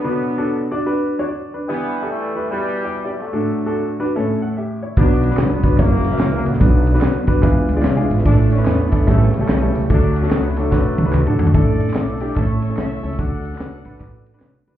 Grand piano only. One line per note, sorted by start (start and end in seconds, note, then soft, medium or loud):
0.04 0.67 B2 medium
0.04 0.30 D4 medium
0.04 0.30 F#4 medium
0.04 0.30 B4 medium
0.38 0.58 D4 medium
0.38 0.59 F#4 medium
0.38 0.59 A4 medium
0.71 0.82 D4 medium
0.71 0.82 F#4 medium
0.71 0.82 D5 loud
0.86 1.12 D4 loud
0.86 1.12 F#4 medium
0.86 1.12 B4 loud
1.19 1.27 D4 medium
1.19 1.26 F#4 medium
1.19 1.27 C#5 loud
1.27 1.52 F#4 medium
1.27 1.52 D5 medium
1.54 1.93 D4 medium
1.54 1.68 B4 medium
1.69 2.32 E3 medium
1.69 1.95 E4 medium
1.69 1.95 G4 medium
1.69 1.95 B4 medium
2.02 2.23 E4 medium
2.02 2.23 G4 medium
2.02 2.23 A4 medium
2.36 2.46 E4 medium
2.36 2.46 G4 medium
2.36 2.46 B4 medium
2.51 2.77 E4 medium
2.51 2.77 G4 medium
2.51 2.77 B4 medium
2.84 2.96 E4 medium
2.84 2.96 G4 medium
2.84 2.96 D5 medium
3.04 3.25 E4 medium
3.04 3.25 G4 medium
3.04 3.25 D5 medium
3.33 3.96 A2 medium
3.33 3.59 D4 medium
3.33 3.59 F#4 medium
3.33 3.59 A4 medium
3.66 3.87 D4 medium
3.66 3.87 F#4 medium
3.66 3.87 A4 medium
4.00 4.10 D4 medium
4.00 4.10 F#4 medium
4.00 4.10 B4 medium
4.16 4.78 A2 medium
4.16 4.41 C#4 loud
4.16 4.41 E4 medium
4.16 4.41 A4 loud
4.42 4.56 A4 medium
4.42 4.56 F#5 medium
4.57 4.82 G4 medium
4.57 4.81 E5 medium
4.83 5.22 E4 medium
4.83 5.21 C#5 medium
4.97 5.60 B2 medium
4.97 5.23 D4 medium
4.97 5.23 F#4 medium
4.97 5.23 B4 medium
5.30 5.51 D4 medium
5.30 5.51 F#4 medium
5.30 5.51 B4 medium
5.64 5.74 D4 medium
5.64 5.74 F#4 medium
5.64 5.74 B4 medium
5.79 6.05 A#3 medium
5.79 6.05 C#4 medium
5.79 6.05 E4 medium
5.79 6.05 F#4 medium
5.79 6.05 C#5 medium
6.12 6.24 A#3 medium
6.12 6.24 C#4 medium
6.12 6.24 E4 medium
6.12 6.24 F#4 medium
6.12 6.24 E5 medium
6.32 6.53 A#3 medium
6.32 6.53 C#4 medium
6.32 6.53 E4 medium
6.32 6.53 F#4 medium
6.32 6.54 A#4 medium
6.60 7.24 B2 medium
6.60 6.87 D4 medium
6.60 6.87 F#4 medium
6.60 6.87 B4 medium
6.94 7.15 D4 medium
6.94 7.15 F#4 medium
6.94 7.15 B4 medium
7.27 7.38 D4 medium
7.27 7.38 F#4 medium
7.27 7.38 B4 loud
7.42 8.06 E3 medium
7.42 7.69 G#3 loud
7.42 7.69 D4 medium
7.42 7.69 E4 medium
7.42 7.69 F4 medium
7.42 7.69 B4 loud
7.76 7.89 G#3 medium
7.76 7.89 D4 medium
7.76 7.89 E4 medium
7.76 7.89 F4 medium
7.76 7.89 D5 medium
7.84 8.23 F5 medium
7.96 8.18 G#3 medium
7.96 8.18 D4 medium
7.96 8.18 E4 medium
7.96 8.18 F4 medium
7.96 8.18 G#4 loud
8.25 8.89 A2 medium
8.25 8.51 D4 medium
8.25 8.51 E4 medium
8.25 8.52 A4 medium
8.58 8.79 D4 medium
8.58 8.79 E4 medium
8.58 8.79 B4 medium
8.92 9.02 D4 medium
8.92 9.02 E4 medium
8.92 9.03 A4 medium
9.06 9.70 A2 medium
9.06 9.33 G3 medium
9.06 9.33 A3 medium
9.06 9.33 C#4 medium
9.06 9.33 E4 medium
9.06 9.33 A4 medium
9.40 9.53 G3 medium
9.40 9.53 A3 medium
9.40 9.53 C#4 medium
9.40 9.53 E4 medium
9.40 9.53 A4 medium
9.61 9.82 G3 medium
9.61 9.82 A3 medium
9.61 9.82 C#4 medium
9.61 9.82 E4 medium
9.61 9.82 A4 medium
9.90 10.53 D3 medium
9.90 10.16 D4 medium
9.90 10.16 F#4 medium
9.90 10.16 A4 medium
10.23 10.44 D4 medium
10.23 10.44 F#4 medium
10.23 10.44 A4 medium
10.57 10.67 D4 medium
10.57 10.67 F#4 medium
10.57 10.67 A4 medium
10.72 10.98 D4 medium
10.72 10.98 F#4 medium
10.72 10.98 B4 medium
11.05 11.17 D4 medium
11.05 11.18 F#4 medium
11.05 11.18 B4 medium
11.26 11.47 D4 medium
11.26 11.47 F#4 medium
11.26 11.47 A4 medium
11.54 12.17 A2 medium
11.54 11.85 D4 medium
11.54 11.85 E4 medium
11.54 11.85 A4 loud
11.95 12.12 D4 medium
11.95 12.13 E4 medium
11.95 12.13 A4 medium
12.21 12.31 D4 loud
12.21 12.31 E4 medium
12.21 12.31 G4 loud
12.36 12.99 A2 medium
12.36 12.62 C#4 medium
12.36 12.62 E4 medium
12.36 12.62 A4 medium
12.70 12.90 C#4 medium
12.70 12.90 E4 medium
12.70 12.91 A4 medium
13.03 13.13 C#4 medium
13.03 13.13 E4 medium
13.03 13.13 A4 medium
13.19 13.81 D3 medium
13.19 13.49 D4 medium
13.19 13.49 F#4 medium
13.19 13.50 A4 medium
13.60 13.77 D4 medium
13.60 13.77 F#4 medium
13.60 13.77 B4 medium
13.85 13.95 D4 medium
13.85 13.96 F#4 medium
13.85 13.96 B4 loud
14.00 14.26 D4 medium
14.00 14.26 F#4 medium
14.00 14.26 B4 loud
14.34 14.54 D4 medium
14.34 14.54 F#4 medium
14.34 14.54 B4 loud
14.68 14.77 D4 medium
14.68 14.77 F#4 medium
14.68 14.77 B4 loud